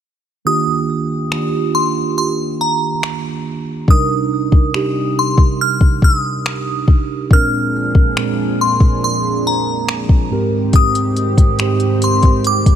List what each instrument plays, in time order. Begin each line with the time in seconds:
0.45 tine electric piano D#3 A#3 D4 F4 G4, synth bell D#6
1.31 tine electric piano D#3 A#3 D4 F4 G4, finger snap
1.75 synth bell C6
2.18 synth bell C6
2.61 synth bell A#5
3.03 finger snap
3.88 tine electric piano C3 G3 D4 D#4 A#4, synth bell D#6, kick
4.52 kick
4.74 tine electric piano C3 G3 D4 D#4 G4, finger snap
5.19 synth bell C6
5.38 kick
5.61 synth bell F6
5.81 kick
6.02 synth bell D#6, kick
6.46 finger snap
6.88 kick
7.31 analog synth pad A#2 F3 D4 G#4, tine electric piano A#2 G#3 C4 D4 A#4, synth bell F6, kick
7.95 kick
8.16 tine electric piano A#2 G#3 C4 D4 A#4, finger snap
8.61 synth bell C6
8.80 kick
9.04 synth bell C6
9.47 synth bell A#5
9.89 finger snap
10.09 kick
10.30 analog synth pad G#2 D#3 C4 G4, tine electric piano G#2 G#3 C4 G4 A#4
10.73 synth bell D#6, kick, closed hi-hat
10.95 closed hi-hat
11.16 closed hi-hat
11.38 kick, closed hi-hat
11.59 tine electric piano G#2 G#3 C4 G4 C5, finger snap, closed hi-hat
11.80 closed hi-hat
12.02 synth bell C6, closed hi-hat
12.23 kick, closed hi-hat
12.44 synth bell D6, closed hi-hat
12.66 kick, closed hi-hat